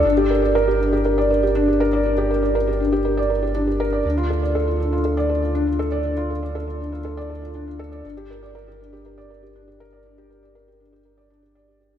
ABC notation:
X:1
M:4/4
L:1/16
Q:1/4=120
K:Gdor
V:1 name="Felt piano"
D G B d B G D G B d B G D G B d | D G B d B G D G B d B G D G B d | D F A d A F D F A d A F D F A d | D F A d A F D F A d A F D F A d |
D G B d B G D G B d B G D G B d | D G B d B G D G B d D G d G G D |]
V:2 name="Sub bass" clef=bass
G,,,16- | G,,,16 | D,,16- | D,,16 |
G,,,16- | G,,,16 |]